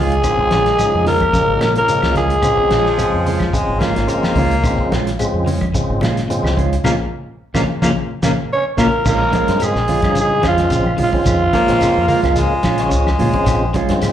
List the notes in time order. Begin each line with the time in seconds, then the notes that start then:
Already playing: C#2 D#3 G#3 C#4 F4
0.00 G#3 G#4
0.12 closed hi-hat
0.23 A#1 C#3 D#3 F3 G#3 C4, kick, closed hi-hat, claves, shekere
0.39 kick
0.51 A#1 F3 G#3 C#4 F4, snare, closed hi-hat, high conga, shekere
0.66 snare, closed hi-hat
0.78 C#3 F3 G#3 D#4, closed hi-hat, high conga, claves, shekere
0.95 F2
1.05 F3 G#3 A#3 C#4 F4 A#4, snare, open hi-hat, low conga, shekere
1.20 kick, closed hi-hat, high conga, claves
1.33 C#3 F3 G#3 A#3, kick, snare, closed hi-hat, high conga, shekere
1.48 G#1
1.59 A#2 F3 G#3 C#4, snare, closed hi-hat, high conga, claves, shekere
1.76 A#3 C#4 F4 A#4, closed hi-hat
1.87 C#3 F3 G#3 A#3, closed hi-hat, shekere
2.02 C#2 C#4 F4, snare, high conga, claves
2.14 F3 G#3 C#4 F4 G#4, kick, snare, closed hi-hat, low conga, shekere
2.30 closed hi-hat
2.41 A#1 C#3 D#3 F3 G#3 C4, kick, closed hi-hat, low conga, claves, shekere
2.58 kick
2.70 A#1 F3 G#3 C#4 F4, snare, closed hi-hat, high conga, shekere
2.86 snare
2.97 C#3 F3 G#3 C4, closed hi-hat, high conga, claves, shekere
3.14 F2
3.26 F3 G#3 C#4 F4, open hi-hat, low conga, shekere
3.39 kick, snare, closed hi-hat, high conga, claves
3.53 C#3 F3 G#3 C4, muted clean electric guitar stroke, kick, closed hi-hat, shekere
3.69 G#1
3.79 F3 G#3 A#3 C#4 F4, kick, snare, closed hi-hat, high conga, claves, shekere
3.96 G#1 C#4 F4, snare, closed hi-hat
4.07 C#3 F3 G#3 A#3 C4, closed hi-hat, shekere
4.23 C#4 F4, muted fingered electric bass stroke, snare, high conga, claves
4.36 C#2 D#3 G#3 C#4 F4, kick, open hi-hat, high conga, low conga, shekere
4.51 closed hi-hat
4.63 A#1 C#3 D#3 F3 G#3 C4, kick, closed hi-hat, low conga, claves, shekere
4.78 kick
4.92 A#1 F3 G#3 C#4 F4, snare, closed hi-hat, high conga, shekere
5.07 snare, closed hi-hat
5.19 C#3 F3 G#3 C4, closed hi-hat, claves, shekere
5.34 F2
5.46 F3 G#3 C#4, open hi-hat, low conga, shekere
5.61 kick, closed hi-hat, high conga, claves
5.74 C#3 F3 G#3 C4, kick, closed hi-hat, shekere
5.90 G#1
6.01 A#2 F3 G#3 C#4 F4, snare, closed hi-hat, high conga, claves, shekere
6.17 snare, closed hi-hat
6.28 C#3 F3 G#3 C4, closed hi-hat, shekere
6.43 C#2, snare, high conga, claves
6.56 D#3 G#3 C#4 F4, kick, closed hi-hat, high conga, low conga, shekere
6.73 closed hi-hat
6.84 A#1 A#2 C#3 F3 G#3 A#3 C#4 F4, kick, snare, high conga, claves, shekere
7.54 A#1 A#2 C#3 F3 G#3 A#3 C#4 F4, kick, snare, high conga, claves, shekere
7.82 A#1 A#2 C#3 F3 G#3 A#3 C#4 F4, kick, snare, high conga, claves, shekere
8.22 A#1 A#2 C#3 F3 G#3 A#3 C#4 F4, kick, snare, high conga, claves, shekere
8.53 C#4 C#5
8.77 A#1 A#2 C#3 F3 G#3 A#3 C#4 F4 A#4, kick, snare, high conga, claves, shekere
8.83 A#3
9.05 A#1 D#3 G#3 C#4 F4 A#4, kick, crash, low conga, claves, shekere
9.11 A#3
9.31 F3 G#3 C#4 F4, kick, snare, closed hi-hat, high conga, shekere
9.48 G2 C#3 F3 G#3 C4, snare, closed hi-hat
9.59 G#3, muted fingered electric bass stroke, closed hi-hat, claves, shekere
9.64 G#3 G#4
9.75 A#1, snare
9.88 F3 G#3 C#4 F4, open hi-hat, low conga, shekere
10.02 G2 C#3 F3 C#4 D#4 F4 G#4, kick, snare, closed hi-hat, high conga, claves
10.14 C#3, closed hi-hat, high conga, shekere
10.21 G#3 G#4
10.42 F2 F3 G#3 C#4 F4, kick, snare, closed hi-hat, high conga, claves, shekere
10.48 F3 F4
10.58 C#3 F3 G#3 C4, snare, closed hi-hat
10.70 A#1 C#3, kick, snare, closed hi-hat, shekere
10.85 high conga, claves
10.97 A#1 D#3 G#3 C#4 F4, open hi-hat, high conga, low conga, shekere
11.03 F3 F4
11.13 C#3 F3 G#3 C4 C#4 F4, kick
11.25 F2 D#3, kick, snare, closed hi-hat, claves, shekere
11.53 F3 G#3 A#3 C#4 F4, kick, snare, closed hi-hat, high conga, shekere
11.68 A#1 C#3 F3 G#3 C4, snare, closed hi-hat
11.80 muted clean electric guitar stroke, muted fingered electric bass stroke, snare, closed hi-hat, low conga, claves, shekere
11.98 F2
12.08 F3 G#3 A#3 F4, muted fingered electric bass stroke, open hi-hat, low conga, shekere
12.23 C#2 C#3 F3 G#3 A#3 C#4 F4, kick, snare, closed hi-hat, high conga, claves
12.36 C#3 G#3, snare, closed hi-hat, shekere
12.63 A#1 F3 G#3 C#4 F4, kick, snare, closed hi-hat, high conga, claves, shekere
12.78 C#3 F3 G#3 C#4, snare, closed hi-hat
12.90 C#2 C#3 G#3, kick, closed hi-hat, shekere
13.07 snare, high conga, claves
13.18 A#2 D#3 G#3 C#4 F4, open hi-hat, high conga, low conga, shekere
13.34 C#3 F3 G#3 C4 C#4 F4, kick, closed hi-hat
13.45 A#1 D#3, kick, snare, closed hi-hat, claves, shekere
13.74 F3 G#3 C#4 F4, kick, closed hi-hat, high conga, shekere
13.89 G2 C#3 F3 G#3 C4, snare, closed hi-hat
14.01 G#3, muted fingered electric bass stroke, snare, closed hi-hat, high conga, low conga, claves, shekere